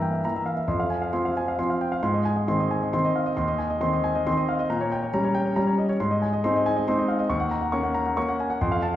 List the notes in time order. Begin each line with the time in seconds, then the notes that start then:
Already playing: G2 E3 A#3 E5 G5 A#5
0.02 G5
0.13 E5
0.25 E3 A#3 A#5
0.36 E5
0.46 F5
0.57 E5
0.68 F2 C6
0.80 F5
0.90 G#5
1.02 F5
1.13 F3 C4 C6
1.25 F5
1.37 G#5
1.48 F5
1.59 F3 C4 C6
1.70 F5
1.81 G5
1.92 F5
2.03 G#2 C6
2.14 D#5
2.25 G#5
2.36 D#5
2.48 D#3 C4 C6
2.59 D#5
2.71 G#5
2.82 D#5
2.93 D#3 C4 C6
3.05 D#5
3.16 F5
3.26 D#5
3.37 D#2 C6
3.48 D#5
3.58 G#5
3.70 D#5
3.81 D#3 C4 C6
3.93 D#5
4.04 G#5
4.15 D#5
4.27 D#3 C4 C6
4.37 D#5
4.49 F5
4.59 D#5
4.70 A#2 A#5
4.81 C#5
4.92 G5
5.03 C#5
5.13 G3 C#4 A#5
5.25 C#5
5.34 G5
5.45 C#5
5.56 G3 C#4 A#5
5.67 C#5
5.78 D#5
5.89 C#5
6.00 G#2 C6
6.11 D#5
6.22 G#5
6.33 D#5
6.44 G#3 C4 D#4 C6
6.56 D#5
6.66 G#5
6.76 D#5
6.88 G#3 C4 D#4 C6
6.98 D#5
7.08 F5
7.19 D#5
7.29 D#2 C#6
7.40 F#5
7.51 A#5
7.61 F#5
7.72 A#3 C#4 C#6
7.83 F#5
7.94 A#5
8.06 F#5
8.17 A#3 C#4 C#6
8.29 F#5
8.40 G#5
8.50 F#5
8.61 F2 C6
8.72 F5
8.82 A5